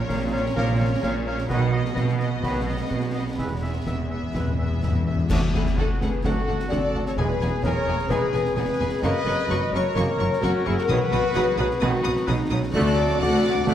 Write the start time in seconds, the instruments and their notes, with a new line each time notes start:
Already playing: viola section C#4, violin section A#4 C#5
0.08 double bass section A#1, cello section A#2, clarinet C#5, oboe F5, flute section A#5, concert bass drum, snare
0.31 viola section C#4, violin section A#4 C#5, clarinet C#5, oboe F5, flute section A#5
0.55 double bass section A#1, cello section A#2, trombone section F3 A#3, french horn section C#4 F4, trumpet section A#4, clarinet C#5, oboe F5, flute section A#5, concert bass drum, snare
0.78 viola section C#4, violin section A#4 C#5, clarinet C#5, oboe F5, flute section A#5
1.02 double bass section A#1, cello section A#2, clarinet C#5, oboe F5, flute section A#5, concert bass drum, snare
1.26 viola section C#4, violin section A#4 C#5, clarinet C#5, oboe F5, flute section A#5
1.38 snare
1.47 double bass section B1, cello section B2, timpani B2, trombone section D#3 F#3, french horn section B3 F#4, viola section B3, violin section F#4, clarinet B4, trumpet section B4, oboe D#5, flute section B5, concert bass drum, snare
1.51 violin section D#5
1.73 viola section B3, violin section F#4 D#5, clarinet B4, oboe D#5, flute section B5
1.85 snare
1.93 double bass section B1, cello section B2, clarinet B4, oboe D#5, flute section B5, concert bass drum, snare
2.09 snare
2.18 viola section B3, violin section F#4 D#5, clarinet B4, oboe D#5, flute section B5, snare
2.41 double bass section B1, cello section B2, trombone section D#3 F#3, french horn section B3 F#4, clarinet B4, trumpet section B4, oboe D#5, flute section B5, concert bass drum, snare
2.65 viola section B3, violin section F#4 D#5, clarinet B4, oboe D#5, flute section B5
2.89 double bass section B1, cello section B2, clarinet B4, oboe D#5, flute section B5, concert bass drum, snare
3.13 viola section B3, violin section F#4 D#5, clarinet B4, oboe D#5, flute section B5
3.37 double bass section E1, cello section E2, timpani E2, trombone section E3 G#3, french horn section B3 E4, trumpet section B4, clarinet B4, oboe E5, flute section G#5, concert bass drum, snare
3.46 timpani E2
3.54 timpani E2
3.61 timpani E2, viola section B3, violin section G#4 E5, clarinet B4, oboe E5, flute section G#5
3.70 timpani E2
3.78 timpani E2
3.85 double bass section E1, timpani E2, cello section E2, clarinet B4, oboe E5, flute section G#5, concert bass drum, snare
3.92 timpani E2
4.00 timpani E2
4.08 timpani E2, viola section B3, violin section G#4 E5, clarinet B4, oboe E5, flute section G#5
4.16 timpani E2
4.23 timpani E2
4.32 double bass section E1, timpani E2, cello section E2, trombone section E3 G#3, french horn section B3 E4, trumpet section B4, clarinet B4, oboe E5, flute section G#5, concert bass drum, snare
4.39 timpani E2
4.47 timpani E2
4.55 timpani E2, viola section B3, clarinet B4, flute section G#5
4.59 timpani E2, violin section G#4 E5, oboe E5
4.69 timpani E2
4.77 timpani E2, flute section G#5
4.82 double bass section E1, cello section E2, timpani E2, clarinet B4, oboe E5, concert bass drum, snare
4.92 timpani E2
5.00 timpani E2
5.05 timpani E2, viola section B3, violin section G#4 E5, clarinet B4, oboe E5, flute section G#5
5.16 timpani E2
5.23 timpani E2
5.28 cello section D2, double bass section D2, trombone section F#3 A3, trumpet section D4, viola section D4 A4, flute section F#4, french horn section F#4, violin section F#4 F#5, concert bass drum, snare, crash
5.52 double bass section D2, cello section D2, viola section D4 A4, trumpet section E4, flute section G#4, french horn section G#4, violin section G#4 F#5, snare
5.66 snare
5.76 double bass section D2, cello section D2, viola section D4 A4, trumpet section F#4, flute section A4, french horn section A4, violin section A4 F#5, concert bass drum
5.99 double bass section D2, cello section D2, viola section D4 A4, trumpet section G#4, flute section B4, french horn section B4, violin section B4 F#5, snare
6.22 double bass section D2, cello section D2, trombone section F#3, viola section D4 A4, clarinet F#4, trumpet section F#4, flute section A4, french horn section A4, violin section A4 F#5, concert bass drum, snare
6.27 trombone section A3
6.47 double bass section D2, cello section D2, viola section D4 A4, violin section F#5
6.60 snare
6.69 double bass section D2, cello section D2, viola section D4 A4, trumpet section A4, french horn section D5, flute section D5, violin section D5 F#5, concert bass drum, snare
6.94 double bass section D2, cello section D2, viola section D4 A4, violin section F#5
7.05 trumpet section A4, french horn section C#5, flute section C#5, violin section C#5, snare
7.16 double bass section E1, timpani E2, cello section E2, trombone section E3 G#3, viola section B3 G#4, trumpet section G#4, clarinet G#4, flute section B4, french horn section B4, violin section B4 G#5, concert bass drum
7.40 double bass section E1, cello section E2, viola section B3 G#4, violin section G#5, snare
7.62 double bass section E1, cello section E2, viola section B3 G#4, trumpet section A#4, french horn section C#5, flute section C#5, violin section C#5 G#5, concert bass drum, snare
7.86 double bass section E1, cello section E2, viola section B3 G#4, violin section G#5
7.99 snare
8.09 double bass section E1, cello section E2, trombone section E3 G#3, viola section B3 G#4, trumpet section G#4, french horn section B4, flute section B4, violin section B4 G#5, concert bass drum, snare
8.33 double bass section E1, cello section E2, viola section B3 G#4, violin section G#5, snare
8.45 snare
8.55 double bass section E1, cello section E2, viola section B3 G#4, trumpet section G#4, flute section B4, french horn section B4, violin section B4 G#5, concert bass drum, snare
8.80 double bass section E1, cello section E2, viola section B3 G#4, violin section G#5
9.01 double bass section F#1, cello section F#2, trombone section C#3 A#3, viola section F#3 A#4, trumpet section B4, flute section D#5, violin section D#5 C#6, french horn section D#5, concert bass drum, snare, crash
9.26 double bass section F#1, cello section F#2, viola section F#3 A#4, violin section C#6, snare
9.39 snare
9.47 double bass section F#1, cello section F#2, viola section F#3 A#4, clarinet F#4, violin section C#6, concert bass drum
9.72 double bass section F#1, cello section F#2, viola section F#3 A#4, trumpet section A#4, violin section C#5 C#6, french horn section C#5, flute section C#5, snare
9.95 double bass section F#1, cello section F#2, trombone section C#3 A#3, viola section F#3 A#4, clarinet A#4, violin section C#6, concert bass drum, snare
10.19 double bass section F#1, cello section F#2, viola section F#3 A#4, violin section C#6
10.33 snare
10.41 double bass section F#1, cello section F#2, viola section F#3 A#4, trumpet section C#4, french horn section F#4, violin section F#4 C#6, flute section F#4, concert bass drum, snare
10.65 double bass section F#1, cello section F#2, viola section F#3 A#4, trumpet section E4, violin section G#4 C#6, french horn section G#4, flute section G#4
10.77 trumpet section F#4, violin section A#4, flute section A#4, french horn section A#4, snare
10.88 double bass section B1, timpani B2, cello section B2, trombone section D#3 F#3, viola section F#3 B4, trumpet section F#4, violin section B4 D#6, flute section B4, french horn section B4, concert bass drum
11.12 double bass section B1, cello section B2, viola section F#3 B4, violin section D#6, snare
11.34 double bass section B1, cello section B2, viola section F#3 B4, clarinet G#4, violin section D#6, concert bass drum, snare
11.58 double bass section B1, cello section B2, viola section F#3 B4, violin section D#6
11.71 snare
11.80 double bass section B1, cello section B2, trombone section D#3 F#3, viola section F#3 B4, clarinet F#4, violin section D#6, concert bass drum, snare
12.03 double bass section B1, cello section B2, viola section F#3 B4, violin section D#6, snare
12.16 snare
12.26 double bass section B1, cello section B2, viola section F#3 B4, clarinet D#4, violin section D#6, concert bass drum, snare
12.50 double bass section B1, cello section B2, viola section F#3 B4, violin section D#6
12.73 cello section D2, double bass section D2, trombone section D3 A3, viola section A3 A4, clarinet F#4, trumpet section A4, flute section D5, french horn section D5, violin section D5 F#6, concert bass drum, snare, crash
12.97 viola section F#3 F#4, violin section D6, snare
13.09 snare
13.18 double bass section D2, cello section D2, viola section A3 A4, french horn section F#4, trumpet section D5, flute section F#5, violin section F#5 F#6, concert bass drum
13.43 viola section F#3 F#4, violin section D6, snare
13.65 cello section D2, double bass section D2, trombone section D3 A3, viola section A3 A4, french horn section F#4, clarinet F#4, trumpet section D5, flute section F#5, violin section F#5 F#6, concert bass drum, snare